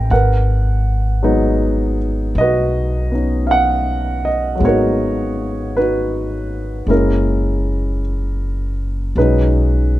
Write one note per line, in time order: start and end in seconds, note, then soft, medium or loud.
0.00 0.11 A#3 soft
0.00 0.11 C#4 soft
0.00 0.13 E4 soft
0.00 0.12 G5 medium
0.00 0.12 A#5 medium
0.10 2.32 G#1 medium
0.10 2.33 A#4 soft
0.10 2.33 B4 soft
0.10 1.97 F#5 medium
1.23 4.54 F#3 medium
1.23 4.58 G#3 soft
1.23 3.10 B3 soft
1.23 3.13 D#4 medium
2.35 4.57 B1 medium
2.35 3.49 D#5 medium
2.40 4.60 F#4 medium
2.40 4.60 B4 soft
3.12 4.61 B3 soft
3.12 4.62 C#4 soft
3.12 4.63 D#4 soft
3.47 3.50 F5 medium
3.51 4.28 F#5 medium
4.25 4.63 D#5 medium
4.55 6.85 F#3 soft
4.59 6.84 G#1 medium
4.59 6.86 G#3 soft
4.59 6.89 B3 soft
4.65 5.77 D#4 medium
4.65 5.76 F#4 medium
4.65 6.87 A#4 soft
4.65 5.73 C#5 medium
5.77 6.86 D#4 soft
5.77 6.86 F#4 soft
5.77 6.93 B4 medium
6.87 9.11 F#1 medium
6.87 9.16 G#3 soft
6.87 9.16 A#3 soft
6.87 9.16 C#4 soft
6.87 6.91 E4 soft
6.87 7.99 A#4 medium
6.93 9.14 E4 soft
9.16 10.00 B1 medium
9.16 10.00 F#3 soft
9.16 10.00 G#3 soft
9.16 10.00 C#4 soft
9.16 10.00 D#4 soft
9.16 10.00 B4 medium